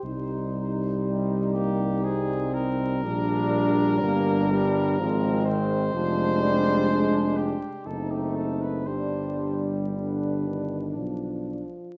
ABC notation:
X:1
M:3/4
L:1/16
Q:1/4=60
K:Cm
V:1 name="Cornet"
c6 G2 A2 B2- | B8- B2 c2- | c6 G2 =A G A =B | c3 z =B4 z4 |]
V:2 name="French horn section"
E12 | D8 C4 | D8 ^D4 | D4 D6 z2 |]
V:3 name="Euphonium" clef=bass
G,12 | G,8 A,4 | A,6 z2 C4 | G,4 D,2 E,2 F,4 |]
V:4 name="Trombone" clef=bass
z4 G,2 B,2 C4 | D4 B,2 G,2 F,2 E,2 | F,2 G,2 A,2 z2 =A,4 | G,8- G,2 z2 |]
V:5 name="Tuba" clef=bass
C,,12 | B,,,4 G,,,4 A,,,4 | F,,,6 z2 ^F,,,4 | G,,,8 =B,,,2 z2 |]